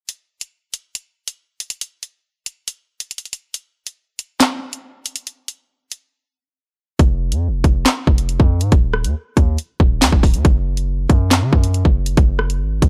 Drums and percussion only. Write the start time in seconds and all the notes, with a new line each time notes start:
0.09 closed hi-hat
0.41 closed hi-hat
0.74 closed hi-hat
0.95 closed hi-hat
1.28 closed hi-hat
1.60 closed hi-hat
1.70 closed hi-hat
1.81 closed hi-hat
2.03 closed hi-hat
2.46 closed hi-hat
2.68 closed hi-hat
3.00 closed hi-hat
3.11 closed hi-hat
3.18 closed hi-hat
3.25 closed hi-hat
3.33 closed hi-hat
3.54 closed hi-hat
3.87 closed hi-hat
4.19 closed hi-hat
4.40 snare, clap, closed hi-hat
4.73 closed hi-hat
5.06 closed hi-hat
5.16 closed hi-hat
5.27 closed hi-hat
5.48 closed hi-hat
5.92 closed hi-hat
6.99 kick, closed hi-hat
7.32 closed hi-hat
7.64 kick, closed hi-hat
7.86 snare, clap, closed hi-hat
8.07 kick
8.18 closed hi-hat
8.29 closed hi-hat
8.40 kick
8.61 closed hi-hat
8.72 kick, closed hi-hat
8.94 cross-stick
9.04 closed hi-hat
9.37 kick, closed hi-hat
9.58 closed hi-hat
9.80 kick
10.02 snare, clap, closed hi-hat
10.12 kick
10.23 kick, open hi-hat
10.34 closed hi-hat
10.45 kick, closed hi-hat
10.77 closed hi-hat
11.10 kick, closed hi-hat
11.31 snare, clap, closed hi-hat
11.53 kick
11.64 closed hi-hat
11.74 closed hi-hat
11.85 kick
12.06 closed hi-hat
12.17 kick, closed hi-hat
12.39 cross-stick
12.50 closed hi-hat
12.82 kick, closed hi-hat